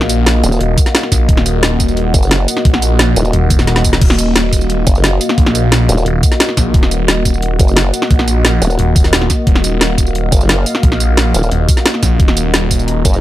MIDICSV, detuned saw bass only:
0, 0, Header, 1, 2, 480
1, 0, Start_track
1, 0, Key_signature, -6, "minor"
1, 0, Tempo, 340909
1, 1814, Time_signature, 4, 2, 24, 8
1, 18593, End_track
2, 0, Start_track
2, 0, Title_t, "Detuned saw bass"
2, 0, Program_c, 0, 39
2, 0, Note_on_c, 0, 34, 97
2, 594, Note_off_c, 0, 34, 0
2, 852, Note_on_c, 0, 27, 101
2, 1073, Note_off_c, 0, 27, 0
2, 1573, Note_on_c, 0, 34, 99
2, 1794, Note_off_c, 0, 34, 0
2, 1813, Note_on_c, 0, 27, 98
2, 2994, Note_off_c, 0, 27, 0
2, 3733, Note_on_c, 0, 34, 99
2, 4434, Note_off_c, 0, 34, 0
2, 4693, Note_on_c, 0, 27, 99
2, 5634, Note_off_c, 0, 27, 0
2, 5653, Note_on_c, 0, 27, 97
2, 6834, Note_off_c, 0, 27, 0
2, 7573, Note_on_c, 0, 34, 95
2, 8274, Note_off_c, 0, 34, 0
2, 8532, Note_on_c, 0, 27, 97
2, 8753, Note_off_c, 0, 27, 0
2, 9253, Note_on_c, 0, 34, 97
2, 9474, Note_off_c, 0, 34, 0
2, 9493, Note_on_c, 0, 27, 96
2, 10674, Note_off_c, 0, 27, 0
2, 11413, Note_on_c, 0, 34, 99
2, 12114, Note_off_c, 0, 34, 0
2, 12373, Note_on_c, 0, 27, 104
2, 13074, Note_off_c, 0, 27, 0
2, 13333, Note_on_c, 0, 27, 97
2, 14514, Note_off_c, 0, 27, 0
2, 15252, Note_on_c, 0, 34, 95
2, 15953, Note_off_c, 0, 34, 0
2, 16213, Note_on_c, 0, 27, 101
2, 16433, Note_off_c, 0, 27, 0
2, 16933, Note_on_c, 0, 34, 97
2, 17154, Note_off_c, 0, 34, 0
2, 17173, Note_on_c, 0, 27, 96
2, 18354, Note_off_c, 0, 27, 0
2, 18593, End_track
0, 0, End_of_file